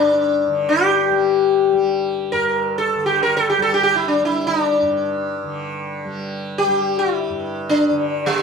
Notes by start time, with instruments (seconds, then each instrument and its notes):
Already playing: tanpura G2 D3 G3, sitar D4
0.47 tanpura D3
0.69 sitar G4
1.10 tanpura G3
1.72 tanpura G3
2.32 tanpura G2, sitar A#4
2.78 sitar A4
2.95 tanpura D3
3.06 sitar G4
3.23 sitar A#4
3.37 sitar A4
3.50 sitar G4
3.58 tanpura G3
3.62 sitar A4
3.74 sitar G4
3.83 sitar G4
3.96 sitar E4
4.08 sitar D4
4.20 tanpura G3
4.25 sitar E4
4.47 sitar D#4
4.62 sitar D4
4.82 tanpura G2
5.43 tanpura D3
6.05 tanpura G3
6.58 sitar G4
6.67 tanpura G3
6.99 sitar E4
7.30 tanpura G2
7.69 sitar D4
7.91 tanpura D3
8.26 sitar G3